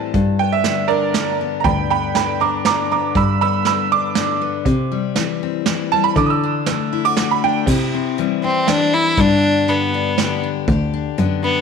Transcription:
0.00 0.15 A2 medium
0.00 0.11 E3 medium
0.00 0.40 G3 medium
0.00 0.12 C4 medium
0.00 0.37 A5 medium
0.14 1.64 G2 medium
0.14 1.20 G2 medium
0.14 kick loud
0.14 closed hi-hat medium
0.39 1.40 B3 medium
0.39 0.51 G5 medium
0.52 0.89 E5 medium
0.64 1.13 D3 medium
0.64 snare medium
0.64 closed hi-hat medium
0.88 2.41 D4 medium
0.88 1.35 A#4 medium
0.88 1.37 D5 medium
1.14 2.14 D3 medium
1.14 snare medium
1.14 closed hi-hat medium
1.41 1.90 B3 medium
1.60 1.64 A#5 medium
1.64 2.71 D2 medium
1.64 3.12 G2 medium
1.64 1.88 G5 medium
1.64 1.89 B5 medium
1.64 kick loud
1.64 closed hi-hat medium
1.90 2.90 B3 medium
1.90 2.13 G5 medium
1.90 2.15 B5 medium
2.15 2.65 D3 medium
2.15 2.38 G5 medium
2.15 2.40 B5 medium
2.15 snare medium
2.15 closed hi-hat medium
2.40 3.13 D4 medium
2.40 2.64 A#5 medium
2.40 2.65 D6 medium
2.65 3.65 D3 medium
2.65 2.89 A#5 medium
2.65 2.90 D6 loud
2.65 snare medium
2.65 closed hi-hat medium
2.91 3.13 B3 medium
2.91 3.14 A#5 medium
2.91 3.16 D6 medium
3.15 4.21 G2 loud
3.15 4.63 G2 medium
3.15 3.40 B5 medium
3.15 3.40 E6 medium
3.15 kick loud
3.15 closed hi-hat medium
3.41 4.40 B3 medium
3.41 3.64 B5 medium
3.41 3.65 E6 loud
3.65 4.15 D3 medium
3.65 3.90 B5 medium
3.65 3.91 E6 medium
3.65 snare medium
3.65 closed hi-hat medium
3.92 4.64 D4 medium
3.92 5.38 D6 loud
4.15 4.66 D3 medium
4.15 snare medium
4.15 closed hi-hat medium
4.41 4.63 B3 medium
4.66 5.72 C3 loud
4.66 5.16 C3 medium
4.66 kick loud
4.66 closed hi-hat medium
4.92 5.92 G3 medium
5.16 5.66 E3 medium
5.16 snare medium
5.16 closed hi-hat medium
5.43 6.14 C4 medium
5.66 6.14 E3 medium
5.66 snare loud
5.66 closed hi-hat medium
5.92 6.17 G3 medium
5.92 6.03 A5 loud
6.04 6.16 B5 loud
6.16 7.22 D3 loud
6.16 7.68 D3 medium
6.16 6.29 D6 medium
6.16 kick loud
6.16 closed hi-hat medium
6.26 6.29 D#6 medium
6.26 7.03 E6 medium
6.43 7.42 D4 medium
6.66 7.16 A3 medium
6.66 snare medium
6.66 closed hi-hat medium
6.93 7.05 E4 medium
7.05 7.67 F#4 medium
7.05 7.29 D6 medium
7.17 7.64 A3 medium
7.17 snare loud
7.17 closed hi-hat medium
7.31 7.42 B5 medium
7.44 7.65 D4 medium
7.44 7.67 G5 loud
7.67 8.73 C3 loud
7.67 8.18 C3 medium
7.67 8.67 E4 medium
7.67 kick loud
7.67 crash loud
7.94 8.43 C4 medium
8.18 8.66 E3 medium
8.18 9.19 G3 medium
8.18 closed hi-hat medium
8.43 8.69 C4 medium
8.43 8.92 C4 medium
8.68 9.15 E3 medium
8.68 8.95 D4 loud
8.68 9.18 E4 medium
8.68 snare loud
8.68 closed hi-hat medium
8.94 9.15 C4 medium
8.94 9.21 E4 loud
9.17 10.65 G2 medium
9.17 10.23 G2 loud
9.17 9.67 D3 medium
9.17 9.68 B3 medium
9.17 9.71 D4 loud
9.17 9.43 D4 medium
9.17 10.17 G4 medium
9.17 kick loud
9.17 closed hi-hat medium
9.43 9.94 D4 medium
9.68 10.16 D3 medium
9.68 10.65 B3 medium
9.68 10.44 B3 medium
9.68 closed hi-hat medium
9.94 10.43 D4 medium
10.18 11.17 D3 medium
10.18 10.65 G4 medium
10.18 snare loud
10.18 closed hi-hat medium
10.43 10.93 D4 medium
10.68 11.03 D2 loud
10.68 11.61 G4 medium
10.68 kick loud
10.68 closed hi-hat medium
10.94 11.44 D4 medium
11.18 11.61 F#2 medium
11.18 11.61 D3 medium
11.18 11.61 B3 medium
11.18 closed hi-hat medium
11.43 11.61 B3 medium
11.43 11.61 D4 medium

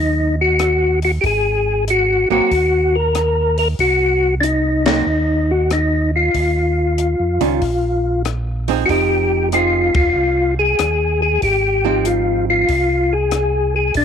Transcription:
0.00 1.19 D#2 medium
0.00 0.47 F#3 medium
0.00 0.47 A#3 medium
0.00 0.48 C4 medium
0.00 0.36 D#4 medium
0.41 1.00 F#4 medium
0.59 cross-stick medium
0.59 closed hi-hat soft
1.02 1.11 F#4 medium
1.02 open hi-hat soft
1.21 2.26 G#1 medium
1.21 1.25 G4 medium
1.21 kick soft
1.21 open hi-hat soft
1.26 1.85 G#4 medium
1.88 2.29 F#4 medium
1.88 closed hi-hat soft
2.30 2.41 G#1 soft
2.30 2.49 F#3 medium
2.30 2.49 A#3 medium
2.30 2.50 C4 medium
2.30 2.97 F#4 medium
2.51 3.75 D#2 medium
2.51 kick soft
2.51 open hi-hat soft
2.96 3.58 A#4 medium
3.15 cross-stick medium
3.15 closed hi-hat soft
3.58 3.68 A#4 medium
3.58 open hi-hat soft
3.79 5.03 C2 medium
3.79 4.35 F#4 medium
3.79 kick soft
3.79 open hi-hat soft
4.40 4.44 D4 medium
4.40 4.85 D#4 medium
4.40 closed hi-hat medium
4.86 5.05 F#3 medium
4.86 5.05 A#3 medium
4.86 5.06 C4 medium
4.86 5.51 D#4 medium
4.86 snare medium
4.86 ride medium
5.06 6.30 D#2 medium
5.51 5.72 F#4 medium
5.71 6.11 D#4 medium
5.71 cross-stick medium
5.71 closed hi-hat soft
6.16 8.22 F4 medium
6.34 7.15 D#2 medium
6.34 kick soft
6.34 open hi-hat soft
6.98 closed hi-hat soft
7.20 7.39 F2 medium
7.40 7.60 C#2 medium
7.40 7.60 D#3 medium
7.40 7.60 G3 medium
7.40 7.60 C#4 medium
7.40 7.60 F4 medium
7.40 open hi-hat soft
7.62 8.85 A#1 medium
7.62 kick soft
7.62 open hi-hat soft
8.25 cross-stick medium
8.25 closed hi-hat soft
8.68 8.87 F3 medium
8.68 8.87 C4 medium
8.68 8.87 D#4 medium
8.68 8.87 G#4 medium
8.68 open hi-hat soft
8.86 9.91 F1 medium
8.86 9.50 F3 medium
8.86 8.89 F#4 medium
8.86 kick soft
8.86 open hi-hat soft
8.90 9.51 C4 medium
8.90 9.51 D#4 medium
8.90 9.49 G4 loud
9.52 9.91 F3 soft
9.52 9.91 C4 medium
9.52 9.91 D#4 medium
9.52 9.94 F4 medium
9.52 9.91 G#4 medium
9.52 closed hi-hat medium
9.95 10.14 E1 medium
9.95 10.54 F4 loud
9.95 kick medium
9.95 ride medium
10.16 10.75 C2 medium
10.59 11.21 G#4 loud
10.79 11.38 D#2 medium
10.79 cross-stick medium
10.79 closed hi-hat medium
11.22 11.41 G#4 medium
11.42 12.65 G#1 medium
11.42 12.08 G4 loud
11.42 kick soft
11.42 open hi-hat soft
11.85 12.65 F3 medium
11.85 12.65 C4 medium
11.85 12.65 D#4 medium
12.05 12.45 F4 medium
12.05 closed hi-hat soft
12.50 13.14 F4 medium
12.69 13.92 C2 medium
12.69 kick soft
12.69 open hi-hat soft
13.13 13.75 G#4 medium
13.31 cross-stick medium
13.31 closed hi-hat soft
13.76 13.95 G#4 medium
13.94 14.05 A#1 medium
13.94 14.05 D4 medium
13.94 kick soft
13.94 open hi-hat soft

